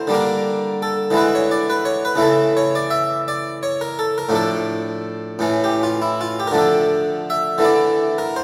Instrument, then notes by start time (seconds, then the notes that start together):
harpsichord
0.07 D3 G3 A#3 D4
0.14 A#4
0.82 A4
1.10 D3 E3 G#3 E4
1.17 B4
1.35 C#5
1.51 D5
1.70 B4
1.85 C#5
2.05 B4
2.15 C#3 E3 A3 E4
2.22 A4
2.57 C#5
2.75 D5
2.91 E5
3.28 D5
3.63 C#5
3.81 A#4
3.99 A4
4.18 A#4
4.29 A2 F3 A3 D4
4.35 A4
5.39 A2 E3 A3 C#4
5.64 G4
5.83 F4
6.02 E4
6.21 F4
6.40 G4
6.47 A#4
6.51 D3 F3 A3 D4
6.58 A4
7.30 E5
7.58 D3 E3 A3 E4
7.64 D5
8.18 A#4
8.36 C5